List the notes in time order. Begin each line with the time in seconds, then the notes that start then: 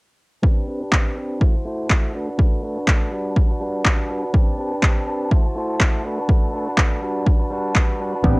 0.43 C4 D4 G4 B4 A5, kick
0.67 C4 D4 G4 B4, tambourine
0.80 D4 G4 B4
0.92 C4 D4, kick, clap
1.16 C4 D4 G4 B4
1.40 A3 E4 F#4 C5, kick
1.54 E4 F#4 C5
1.65 A3 E4 F#4 C5, tambourine
1.80 tambourine
1.89 A3, kick, clap
2.13 A3 D4 F#4 B4
2.27 D4 F#4 B4
2.38 A3 F#4, kick
2.62 A3 D4 F#4 B4, tambourine
2.75 D4 F#4 B4, tambourine
2.87 A3, kick, clap
3.11 G3 D4 F#4 B4
3.36 kick
3.49 D4 F#4 B4
3.60 G3 D4 F#4 B4, tambourine
3.74 tambourine
3.85 kick, clap
4.09 G3 D4 F#4 B4
4.22 D4 F#4 B4, tambourine
4.33 C4 D4 B4, kick
4.57 C4 D4 G4 B4, tambourine
4.71 D4 G4 B4, tambourine
4.82 C4 D4 G4 B4, kick, clap
5.06 C4 D4 G4 B4
5.21 tambourine
5.31 A3 E4, kick
5.44 E4 F#4 C5
5.55 A3 E4 F#4 C5, tambourine
5.80 kick, clap
6.04 A3 D4 F#4 B4
6.17 D4 F#4 B4, tambourine
6.28 A3, kick
6.53 A3 D4 F#4 B4, tambourine
6.66 D4 F#4 B4, tambourine
6.77 A3 B4, kick, clap
7.01 G3 D4 F#4 B4, tambourine
7.16 tambourine
7.27 kick
7.39 D4 F#4 B4
7.50 G3 D4 F#4 B4, tambourine
7.65 tambourine
7.75 B4, kick, clap
7.99 G3 D4 F#4 B4, tambourine
8.13 D4 F#4 B4, tambourine
8.24 A1 B3 C4 D4 G4 B4 A5, kick